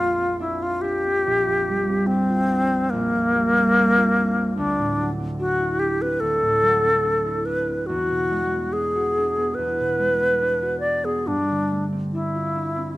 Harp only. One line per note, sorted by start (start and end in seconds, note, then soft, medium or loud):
0.00 1.25 A#1 medium
0.00 1.27 F2 soft
0.00 3.86 A#3 soft
0.00 0.17 C4 soft
0.00 0.39 D4 soft
0.00 0.61 F4 soft
0.18 1.03 C4 soft
0.40 0.82 D4 soft
0.62 2.29 F4 soft
0.84 2.09 D4 soft
1.05 1.88 C4 soft
1.27 2.92 A#1 medium
1.47 3.14 F2 soft
1.69 3.34 G3 soft
1.89 2.71 C4 soft
2.10 2.50 D4 soft
2.30 3.96 F4 soft
2.51 3.75 D4 soft
2.72 3.56 C4 soft
2.93 4.61 A#1 medium
3.15 4.61 F2 soft
3.35 4.61 G3 soft
3.57 4.36 C4 soft
3.77 4.17 D4 medium
3.97 4.60 F4 soft
4.18 5.38 D4 soft
4.37 5.18 C4 soft
4.57 6.20 D2 medium
4.78 6.41 A2 soft
4.99 6.61 F#3 soft
5.20 6.00 C4 soft
5.39 5.78 D4 soft
5.60 7.24 E4 soft
5.79 7.03 D4 medium
6.02 6.83 C4 soft
6.22 7.92 D2 medium
6.42 7.91 A2 soft
6.62 10.52 F#3 soft
6.84 7.66 C4 soft
7.04 7.45 D4 soft
7.26 11.16 E4 soft
7.47 8.72 D4 soft
7.67 7.91 C4 soft
7.89 9.57 E2 medium
8.11 9.78 B2 soft
8.31 9.97 G#3 soft
8.53 9.36 B3 soft
8.73 9.16 D4 soft
8.96 10.61 F#4 medium
9.18 10.40 D4 soft
9.38 10.19 B3 soft
9.58 11.30 E2 medium
9.80 11.31 B2 soft
9.99 11.30 G#3 soft
10.20 11.03 B3 soft
10.41 10.82 D4 soft
10.62 11.30 F#4 soft
10.84 12.13 D4 soft
11.05 11.30 B3 soft
11.27 12.97 G2 medium
11.50 12.97 D3 soft
11.71 12.97 A3 soft
11.92 12.75 C4 soft
12.15 12.54 D4 soft
12.35 12.97 F4 soft
12.55 12.97 D4 soft
12.76 12.97 C4 soft